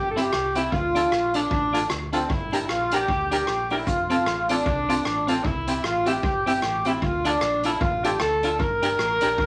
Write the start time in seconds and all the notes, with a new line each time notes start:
Already playing: G1
0.10 A4
0.16 C4 E4 G4, cross-stick, closed hi-hat
0.32 C2, muted clean electric guitar stroke, cross-stick
0.55 C4 E4 G4, closed hi-hat
0.71 D2 F4, kick
0.95 D4 F4 A4, closed hi-hat
1.12 A#1, cross-stick
1.34 D4 F4 A4, closed hi-hat
1.50 A1, muted clean electric guitar stroke, kick
1.73 D4 F4 A4, closed hi-hat
1.90 D2, muted clean electric guitar stroke, cross-stick
2.13 C4 D4 F4 A4, closed hi-hat
2.29 G1 E4, kick
2.52 D4 G4 A#4, closed hi-hat
2.68 A#1 F4, cross-stick
2.91 D4 G4 A#4, closed hi-hat
3.08 D2, muted clean electric guitar stroke, kick
3.31 D4 G4 A#4, closed hi-hat
3.47 A#1, muted clean electric guitar stroke, cross-stick
3.70 D4 E4 G4 A#4, open hi-hat
3.87 F1 F4, kick, hi-hat pedal
4.10 C4 F4 A4, closed hi-hat
4.26 A1, cross-stick
4.48 C4 D4 F4 A4, closed hi-hat
4.66 C2, muted clean electric guitar stroke, kick
4.89 C4 F4 A4, closed hi-hat
5.05 A1, muted clean electric guitar stroke, cross-stick
5.27 C4 F4 A4, closed hi-hat
5.44 C2 E4, kick
5.68 C4 E4 G4, closed hi-hat
5.83 A1 F4, cross-stick
6.06 C4 E4 G4, closed hi-hat
6.23 G1, muted clean electric guitar stroke, kick
6.46 C4 E4 G4, closed hi-hat
6.62 A1, muted clean electric guitar stroke, cross-stick
6.85 C4 E4 G4, closed hi-hat
7.02 D2 F4, kick
7.25 D4 F4 A4, closed hi-hat
7.41 A#1, cross-stick
7.63 D4 E4 F4 A4, closed hi-hat
7.81 A1 F4, muted clean electric guitar stroke, kick
8.04 D4 F4 G4 A4, closed hi-hat
8.20 D2 A4, muted clean electric guitar stroke, cross-stick
8.43 D4 F4 A4, closed hi-hat
8.60 G1 A#4, kick
8.82 D4 G4 A#4, closed hi-hat
8.99 A1, cross-stick
9.21 A#1 D4 G4 A#4, closed hi-hat
9.38 D2, muted clean electric guitar stroke, kick